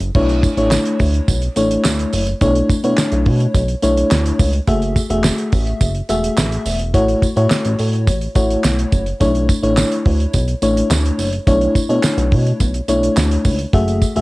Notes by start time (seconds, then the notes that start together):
0.00 F#1, closed hi-hat
0.15 B1 A3 D4 E4 C#5, kick, crash
0.29 closed hi-hat
0.43 kick, closed hi-hat, tambourine
0.57 A1 A3 D4 E4 C#5, closed hi-hat
0.71 snare, clap, tambourine
0.85 closed hi-hat
0.99 D2, kick, open hi-hat, tambourine
1.14 closed hi-hat
1.28 B1, kick, closed hi-hat, tambourine
1.42 closed hi-hat
1.56 A1 A3 D4 E4 C#5, closed hi-hat, tambourine
1.71 closed hi-hat
1.84 D2, snare, clap, tambourine
1.99 closed hi-hat
2.13 F#1, open hi-hat, tambourine
2.27 closed hi-hat
2.41 B1 A3 D4 E4 C#5, kick, closed hi-hat, tambourine
2.55 closed hi-hat
2.69 kick, closed hi-hat, tambourine
2.84 B2 A3 D4 E4 C#5, closed hi-hat
2.98 snare, clap, tambourine
3.12 B1, closed hi-hat
3.26 B2, kick, open hi-hat
3.40 closed hi-hat
3.54 B1, kick, closed hi-hat, tambourine
3.68 closed hi-hat
3.82 B1 A3 D4 E4 C#5, closed hi-hat, tambourine
3.97 closed hi-hat
4.11 D2, snare, clap, tambourine
4.26 closed hi-hat
4.39 C#2, kick, open hi-hat, tambourine
4.53 closed hi-hat
4.67 F#1 A3 F#4 G#4 E5, kick, closed hi-hat
4.82 closed hi-hat
4.96 kick, closed hi-hat, tambourine
5.10 E1 A3 F#4 G#4 E5, closed hi-hat
5.24 snare, clap, tambourine
5.38 closed hi-hat
5.52 A1, kick, open hi-hat, tambourine
5.67 closed hi-hat
5.81 F#1, kick, closed hi-hat, tambourine
5.95 closed hi-hat
6.09 E1 A3 F#4 G#4 E5, closed hi-hat, tambourine
6.24 closed hi-hat
6.37 A1, snare, clap, tambourine
6.52 closed hi-hat
6.66 E1, open hi-hat, tambourine
6.79 closed hi-hat
6.94 A1 A3 E4 F#4 C#5, kick, closed hi-hat, tambourine
7.08 closed hi-hat
7.22 kick, closed hi-hat, tambourine
7.36 A2 A3 E4 F#4 C#5, closed hi-hat
7.50 snare, clap, tambourine
7.65 A1, closed hi-hat
7.79 A2, open hi-hat, tambourine
7.93 closed hi-hat
8.07 A1, kick, closed hi-hat, tambourine
8.21 closed hi-hat
8.35 A1 A3 E4 F#4 C#5, kick, closed hi-hat, tambourine
8.50 closed hi-hat
8.64 B1, snare, clap, tambourine
8.79 closed hi-hat
8.92 F#1, kick, closed hi-hat, tambourine
9.06 closed hi-hat
9.20 B1 A3 D4 E4 C#5, kick, closed hi-hat, tambourine
9.35 closed hi-hat
9.49 kick, closed hi-hat, tambourine
9.63 A1 A3 D4 E4 C#5, closed hi-hat
9.77 snare, clap, tambourine
9.92 closed hi-hat
10.06 D2, kick, open hi-hat
10.20 closed hi-hat
10.33 B1, kick, closed hi-hat, tambourine
10.48 closed hi-hat
10.62 A1 A3 D4 E4 C#5, closed hi-hat, tambourine
10.77 closed hi-hat
10.90 D2, snare, clap, tambourine
11.05 closed hi-hat
11.18 F#1, open hi-hat, tambourine
11.33 closed hi-hat
11.47 B1 A3 D4 E4 C#5, kick, closed hi-hat, tambourine
11.61 closed hi-hat
11.75 kick, closed hi-hat, tambourine
11.89 B2 A3 D4 E4 C#5, closed hi-hat
12.03 snare, clap, tambourine
12.18 B1, closed hi-hat
12.32 B2, kick, open hi-hat
12.47 closed hi-hat
12.60 B1, kick, closed hi-hat, tambourine
12.74 closed hi-hat
12.88 B1 A3 D4 E4 C#5, closed hi-hat, tambourine
13.03 closed hi-hat
13.17 D2, snare, clap, tambourine
13.31 closed hi-hat
13.45 C#2, kick, open hi-hat, tambourine
13.59 closed hi-hat
13.73 F#1 A3 F#4 G#4 E5, kick, closed hi-hat
13.88 closed hi-hat
14.02 kick, closed hi-hat, tambourine
14.16 E1 A3 F#4 G#4 E5, closed hi-hat